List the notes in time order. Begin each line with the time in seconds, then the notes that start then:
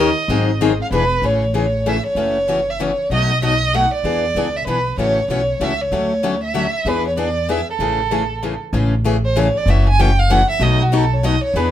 Already playing: D#2 D#5
0.28 G#1 D#3 F#3 C4 D#4 G#4
0.61 D#3 F#3 C4 D#4 G#4
0.82 F5
0.91 E1 E3 B3 D4 G#4 B4
1.22 A1 C#3 E3 A3 C#4 G#4 C#5
1.54 C#3 E3 A3 C#4 G#4 C#5
1.86 C#3 E3 A3 C#4 G#4 E5
2.06 C#5
2.15 F#1 C#3 E3 A3 C#4 F#4
2.48 C#3 E3 A3 C#4 F#4
2.70 E5
2.80 C#3 E3 A3 C#4 F#4 C#5
3.10 B1 B2 F#3 A3 D#4 F#4
3.14 D#5
3.42 B2 F#3 A3 D#4 F#4 D#5
3.74 B2 F#3 A3 D#4 F#4 F#5
3.94 D5
4.04 E2 E3 B3 D4 G#4
4.35 C#2 E3 B3 D4 G#4
4.56 E5
4.66 B1 E3 B3 D4 G#4 B4
4.97 A1 C#3 E3 A3 C#4 F#4 C#5
5.28 B1 C#3 E3 A3 C#4 F#4 C#5
5.60 C#2 C#3 E3 A3 C#4 F#4 E5
5.81 C#5
5.91 D2 D3 F#3 A3 C#4 F#4
6.23 D3 F#3 A3 C#4 F#4
6.44 E5
6.54 D3 F#3 A3 C#4 F#4
6.85 E2 E3 B3 D4 G#4 B4
7.07 C#5
7.17 E3 B3 D4 G#4 D5
7.48 E3 B3 D4 G#4 E5
7.70 A4
7.79 A1 C#3 E3 A3 C#4 G#4
8.11 C#3 E3 A3 C#4 G#4
8.43 C#3 E3 A3 C#4 G#4
8.73 A1 C#3 E3 A3 C#4 G#4
9.04 C#3 E3 A3 C#4 G#4
9.25 C5
9.36 C#3 E3 A3 C#4 G#4 C#5
9.57 D5
9.66 F#1 C#3 E3 A3 C#4 F#4
9.70 E5
9.89 G#5
9.99 C#3 E3 A3 C#4 F#4 G5
10.19 F5
10.30 C#3 E3 A3 C#4 F#4 F#5
10.50 E5
10.60 B1 B2 F#3 A3 D#4 F#4 D#5
10.82 F#4
10.92 B2 F#3 A3 D#4 F#4 A4
11.13 C#5
11.23 B2 F#3 A3 D#4 F#4 D#5
11.44 C#5
11.54 E2 E3 B3 D4 G#4 B4